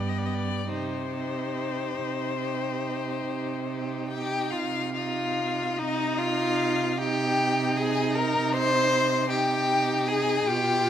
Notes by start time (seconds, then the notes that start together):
Already playing: G2 B3 G4
0.00 D5
0.09 D#5
0.18 D5
0.26 D#5
0.34 D5
0.67 C3 D#4 G4 C5
1.11 D#4 G4
1.97 C3
2.39 D#4 G4
3.25 C3
3.66 D#4 G4
4.08 G4 G5
4.50 C3 F4 F5
4.94 D#4 F4 F5
5.77 C3 D#4 D#5
6.17 F4 F5
6.97 D#4 G4 G5
7.76 G#4 G#5
8.14 A#4 A#5
8.53 C5 C6
9.29 D#4 G4 G5
10.08 G#4 G#5
10.46 B2 F4 G4 G5